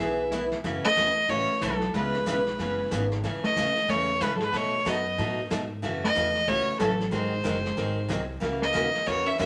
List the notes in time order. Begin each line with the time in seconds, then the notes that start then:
Already playing: B3 E5
0.00 B1 E3 B3 E4 G#4
0.32 E3 B3 E4 G#4, kick, snare, hi-hat pedal
0.52 snare
0.64 F#2 C#3 E3 A3 C#4 F#4, brush sweep, kick, snare
0.84 A3 D#5, muted upright bass stroke
0.96 E2 C#3 E3 A3 C#4 F#4, kick, snare, hi-hat pedal
1.28 A1 C#3 E3 A3 C#4 F#4 C#5, brush sweep, kick, snare
1.50 muted upright bass stroke
1.61 B1 C#3 E3 F#3 A3 C#4 F#4 A4, kick, snare, hi-hat pedal
1.81 snare
1.94 C#2 C#3 E3 G#3 B3 C#4 G#4 B4, brush sweep, kick, snare
2.14 snare
2.26 B1 C#3 E3 B3 C#4 G#4, kick, snare, hi-hat pedal
2.47 snare
2.59 F#1 C#3 E3 B3 C#4 G#4, brush sweep, kick, snare
2.91 G#1 C#3 E3 B3 C#4 G#4, kick, snare, hi-hat pedal
3.12 snare
3.23 C#2 C#3 E3 A3 C#4 G#4, brush sweep, kick, snare
3.44 A3 D#5, muted upright bass stroke, snare
3.56 D#2 C#3 E3 A3 C#4 G#4, kick, snare, hi-hat pedal
3.76 snare
3.88 E2 C#3 E3 A3 C#4 G#4 C#5, brush sweep, kick, snare
4.21 G#2 C#3 E3 G#3 A3 C#4 G#4 B4, kick, snare, hi-hat pedal
4.35 F#3 A4
4.41 G#3 B4, snare
4.52 B2 F#3 A3 D#4 F#4 C#5, brush sweep, kick, snare
4.85 F#2 B2 F#3 A3 B3 D#4 F#4 D#5, kick, snare, hi-hat pedal
5.18 A2 B2 F#3 A3 D#4 F#4, brush sweep, kick, snare
5.50 G#2 B2 F#3 A3 D#4 F#4, kick, snare, hi-hat pedal
5.82 F#2 C#3 E3 A3 C#4 F#4, brush sweep, kick, snare
6.04 A3 D#5
6.15 E2 C#3 E3 A3 C#4 F#4, kick, snare, hi-hat pedal
6.35 snare
6.47 C#2 C#3 E3 A3 C#4 F#4 C#5, brush sweep, kick, snare
6.68 muted upright bass stroke
6.79 A1 C#3 E3 F#3 A3 C#4 F#4 A4, kick, snare, hi-hat pedal
7.00 snare
7.11 G#1 D#3 F#3 G#3 C4 D#4 G#4 C5, brush sweep, kick, snare
7.44 F#1 D#3 F#3 C4 D#4 G#4, kick, snare, hi-hat pedal
7.65 snare
7.77 G#1 D#3 F#3 C4 D#4 G#4, brush sweep, kick, snare
8.08 C2 D#3 F#3 C4 D#4 G#4, kick, snare, hi-hat pedal
8.40 C#2 C#3 E3 A#3 C#4 F#4, brush sweep, kick, snare
8.62 A#3 D#5
8.73 D#2 C#3 E3 A#3 C#4 F#4, kick, snare, hi-hat pedal
8.95 muted upright bass stroke, snare
9.06 E2 C#3 E3 A#3 C#4 F#4 C#5, brush sweep, kick, snare
9.26 C#4 E5
9.38 F#2 C#3 E3 A#3 C#4 F#4 E5, kick, snare, hi-hat pedal